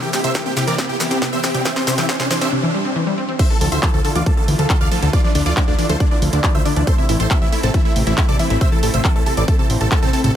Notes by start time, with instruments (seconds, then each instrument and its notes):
Already playing: supersaw synth C3 C4 E4 G4, riser
0.02 synth pluck E3 G5, supersaw synth G4, maracas
0.13 analog synth bass C2, synth pluck C4 G5, supersaw synth G4, snare, open hi-hat, maracas
0.24 analog synth bass C2, synth pluck C3 E6, supersaw synth C5 E5, closed hi-hat, maracas
0.34 synth pluck E3 G5, supersaw synth G4, kick, snare, closed hi-hat, maracas
0.46 analog synth bass C2, synth pluck C4 G5, supersaw synth G4, maracas
0.57 synth pluck C3 G5, supersaw synth G4, snare, open hi-hat, maracas
0.67 analog synth bass C2, synth pluck E3 D6, supersaw synth A#4 D5, closed hi-hat, maracas
0.78 synth pluck C4 G5, supersaw synth G4, kick, snare, closed hi-hat, maracas
0.89 synth pluck C3 G5, supersaw synth G4, maracas
1.00 analog synth bass C2, synth pluck E3, snare, open hi-hat, maracas
1.11 analog synth bass C2, synth pluck C4 G5, supersaw synth G4, closed hi-hat, maracas
1.22 synth pluck C3 G5, supersaw synth G4, kick, snare, closed hi-hat, maracas
1.33 analog synth bass C2, synth pluck E3 E6, supersaw synth C5 E5, maracas
1.43 synth pluck C4 G5, supersaw synth G4, snare, open hi-hat, maracas
1.54 analog synth bass C2, synth pluck C3 G5, supersaw synth G4, closed hi-hat, maracas
1.65 synth pluck E3 G6, supersaw synth E5 G5, kick, snare, closed hi-hat, maracas
1.76 synth pluck C4 C6, supersaw synth C5, snare, maracas
1.87 analog synth bass C2, synth pluck C3 C6, supersaw synth C5, snare, open hi-hat, maracas
1.98 analog synth bass C2, synth pluck E3 G6, supersaw synth E5 G5, snare, closed hi-hat, maracas
2.09 synth pluck C4 C6, supersaw synth C5, kick, snare, closed hi-hat, maracas
2.19 analog synth bass C2, synth pluck C3 C6, supersaw synth C5, snare, maracas
2.31 synth pluck E3 C6, supersaw synth C5, snare, open hi-hat, maracas
2.41 analog synth bass C2, synth pluck C4 E6, supersaw synth C5 E5, snare, closed hi-hat, maracas
2.52 synth pluck C3
2.63 synth pluck E3
2.74 synth pluck G3
2.85 synth pluck C4
2.96 synth pluck E3
3.07 synth pluck G3
3.18 synth pluck C4
3.29 synth pluck C4
3.39 supersaw synth D3 A3 E4 F4 C5 E5, synth pluck D3 E6, kick, closed hi-hat, crash
3.50 synth pluck E3 A5, supersaw synth A4
3.61 analog synth bass D2, synth pluck F3 A5, supersaw synth A4, open hi-hat
3.72 analog synth bass D2, synth pluck D3 E6, supersaw synth C5 E5, closed hi-hat
3.83 synth pluck E3 A5, supersaw synth A4, kick, clap, closed hi-hat
3.94 analog synth bass D2, synth pluck F3 A5, supersaw synth A4
4.05 synth pluck D3 A5, supersaw synth A4, open hi-hat
4.15 analog synth bass D2, synth pluck E3 D6, supersaw synth F4 D5, closed hi-hat
4.26 synth pluck F3 A5, supersaw synth A4, kick, closed hi-hat
4.37 synth pluck D3 A5, supersaw synth A4
4.48 analog synth bass D2, synth pluck E3, open hi-hat
4.59 analog synth bass D2, synth pluck F3 A5, supersaw synth A4, closed hi-hat
4.70 synth pluck D3 A5, supersaw synth A4, kick, clap, closed hi-hat
4.81 analog synth bass D2, synth pluck E3 F6, supersaw synth D5 F5
4.92 synth pluck F3 A5, supersaw synth A4, open hi-hat
5.02 analog synth bass D2, synth pluck D3 A5, supersaw synth A4, closed hi-hat
5.13 synth pluck E3 D6, supersaw synth F4 D5, kick, closed hi-hat
5.24 synth pluck F3 D5, supersaw synth D4
5.35 analog synth bass D2, synth pluck D3 D5, supersaw synth D4, open hi-hat
5.46 analog synth bass D2, synth pluck E3 D6, supersaw synth F4 D5, closed hi-hat
5.57 synth pluck F3 D5, supersaw synth D4, kick, clap, closed hi-hat
5.68 analog synth bass D2, synth pluck D3 D5, supersaw synth D4
5.79 synth pluck E3 D5, supersaw synth D4, open hi-hat
5.89 analog synth bass D2, synth pluck F3 C6, supersaw synth A4 C5, closed hi-hat
6.00 synth pluck D3 D5, supersaw synth D4, kick, closed hi-hat
6.11 synth pluck E3 D5, supersaw synth D4
6.22 analog synth bass D2, synth pluck F3, open hi-hat
6.33 analog synth bass D2, synth pluck D3 D5, supersaw synth D4, closed hi-hat
6.44 supersaw synth D4, synth pluck D5, kick, clap, closed hi-hat
6.55 analog synth bass D2, synth pluck F3 E6, supersaw synth C5 E5
6.65 synth pluck D3 D5, supersaw synth D4, open hi-hat
6.76 analog synth bass D2, synth pluck E3 D5, supersaw synth D4, closed hi-hat
6.87 supersaw synth A3 C4 A4 C5, synth pluck A3 C6, kick, closed hi-hat
6.98 synth pluck C3 E5, supersaw synth E4
7.09 analog synth bass A1, synth pluck E3 E5, supersaw synth E4, open hi-hat
7.20 analog synth bass A1, synth pluck A3 C6, supersaw synth A4 C5, closed hi-hat
7.31 synth pluck C3 E5, supersaw synth E4, kick, clap, closed hi-hat
7.42 analog synth bass A1, synth pluck E3 E5, supersaw synth E4
7.52 synth pluck A3 E5, supersaw synth E4, open hi-hat
7.63 analog synth bass A1, synth pluck C3 A5, supersaw synth C4 A4, closed hi-hat
7.74 synth pluck E3 E5, supersaw synth E4, kick, closed hi-hat
7.85 synth pluck A3 E5, supersaw synth E4
7.96 analog synth bass A1, synth pluck C3, open hi-hat
8.07 analog synth bass A1, synth pluck E3 E5, supersaw synth E4, closed hi-hat
8.17 synth pluck A3 E5, supersaw synth E4, kick, clap, closed hi-hat
8.29 analog synth bass A1, synth pluck C3 D6, supersaw synth A4 D5
8.39 synth pluck E3 E5, supersaw synth E4, open hi-hat
8.50 analog synth bass A1, synth pluck A3 E5, supersaw synth E4, closed hi-hat
8.61 synth pluck C3 E6, supersaw synth C5 E5, kick, closed hi-hat
8.72 synth pluck E3 A5, supersaw synth A4
8.83 analog synth bass A1, synth pluck A3 A5, supersaw synth A4, open hi-hat
8.94 analog synth bass A1, synth pluck C3 E6, supersaw synth C5 E5, closed hi-hat
9.05 synth pluck E3 A5, supersaw synth A4, kick, clap, closed hi-hat
9.15 analog synth bass A1, synth pluck A3 A5, supersaw synth A4
9.26 synth pluck C3 A5, supersaw synth A4, open hi-hat
9.37 analog synth bass A1, synth pluck E3 D6, supersaw synth A4 D5, closed hi-hat
9.48 synth pluck A3 A5, supersaw synth A4, kick, closed hi-hat
9.59 synth pluck C3 A5, supersaw synth A4
9.70 analog synth bass A1, synth pluck C4, open hi-hat
9.81 analog synth bass A1, synth pluck C3 A5, supersaw synth A4, closed hi-hat
9.92 synth pluck C4 A5, supersaw synth A4, kick, clap, closed hi-hat
10.02 analog synth bass A1, synth pluck C3 A5, supersaw synth C4 A4
10.13 synth pluck C4 A5, supersaw synth A4, open hi-hat
10.24 analog synth bass A1, synth pluck C3 A5, supersaw synth A4, closed hi-hat